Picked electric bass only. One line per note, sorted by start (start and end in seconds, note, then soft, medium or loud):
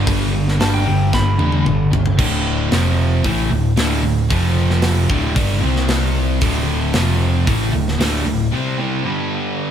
0.07 0.58 G1 loud
0.61 0.86 G1 medium
0.88 1.13 G1 loud
1.14 1.38 G1 medium
1.39 1.64 E2 loud
1.65 1.91 G1 medium
1.92 2.17 G1 medium
2.19 2.68 D1 loud
2.71 3.21 F1 loud
3.25 3.49 A1 loud
3.51 3.76 D1 medium
3.77 4.02 D1 medium
4.03 4.28 D1 medium
4.31 5.06 F1 medium
5.09 5.34 D1 loud
5.37 5.61 G1 medium
5.62 6.38 C2 medium
6.41 6.91 D1 loud
6.95 7.44 F1 loud
7.48 7.72 A1 medium
7.74 7.99 D1 medium
7.99 8.24 D1 medium
8.26 8.51 D1 medium